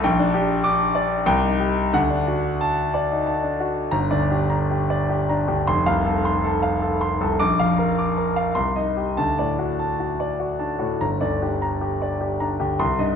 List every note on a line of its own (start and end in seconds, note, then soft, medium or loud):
0.04 1.22 A#1 medium
0.04 0.51 G5 medium
0.19 0.43 D4 medium
0.34 0.82 G4 medium
0.64 1.13 D6 medium
0.95 1.26 D5 medium
1.26 1.91 C2 medium
1.26 1.79 G5 medium
1.44 1.70 D#4 soft
1.60 1.93 G4 soft
1.93 3.88 D2 medium
1.93 2.48 F#5 medium
2.10 2.38 D4 medium
2.27 2.82 F#4 soft
2.61 3.14 A5 medium
2.94 3.47 D5 medium
3.12 3.28 D#4 soft
3.27 3.80 A5 medium
3.43 3.70 D4 soft
3.60 3.92 F#4 soft
3.91 5.64 G1 medium
3.91 4.23 A#5 medium
4.11 4.43 D2 soft
4.11 4.43 D5 medium
4.31 4.63 D4 soft
4.31 4.63 G4 soft
4.50 4.82 A#5 soft
4.71 5.03 G4 soft
4.90 5.22 D5 medium
5.09 5.41 G4 soft
5.29 5.60 D4 soft
5.29 5.60 A#5 soft
5.48 5.67 D2 soft
5.48 5.67 G4 soft
5.67 7.35 F1 medium
5.67 5.98 C6 medium
5.86 6.17 C2 soft
5.86 6.17 F5 medium
6.05 6.36 A4 medium
6.25 6.55 C6 medium
6.44 6.74 A4 medium
6.62 6.93 F5 medium
6.82 7.12 A4 soft
7.01 7.31 C6 medium
7.21 7.40 C2 soft
7.21 7.40 A4 medium
7.39 8.53 A#1 medium
7.39 7.70 D6 medium
7.60 7.90 F2 soft
7.60 7.90 F5 medium
7.78 8.09 A#4 medium
7.98 8.29 D6 soft
8.17 8.48 A#4 soft
8.36 8.56 F5 medium
8.55 9.15 C2 soft
8.55 8.88 C6 medium
8.76 9.09 D#4 soft
8.76 9.09 D#5 soft
8.97 9.17 G4 soft
9.17 10.97 D2 soft
9.17 9.50 A5 medium
9.38 9.71 A2 soft
9.38 9.71 D5 soft
9.58 9.91 D4 soft
9.58 9.91 F#4 soft
9.79 10.11 A5 soft
10.00 10.32 F#4 soft
10.20 10.52 D5 soft
10.40 10.72 F#4 soft
10.59 10.92 D4 soft
10.59 10.92 A5 soft
10.79 11.00 A2 soft
10.79 11.00 F#4 soft
11.01 12.76 G1 soft
11.01 11.33 A#5 medium
11.21 11.53 D2 soft
11.21 11.53 D5 soft
11.42 11.74 D4 soft
11.42 11.73 G4 soft
11.62 11.93 A#5 soft
11.81 12.12 G4 soft
12.02 12.33 D5 soft
12.21 12.52 G4 soft
12.40 12.72 D4 soft
12.40 12.72 A#5 soft
12.59 12.79 D2 soft
12.59 12.80 G4 soft
12.79 13.16 C2 medium
12.79 13.11 C6 medium
12.99 13.16 G2 soft
12.99 13.16 D#5 soft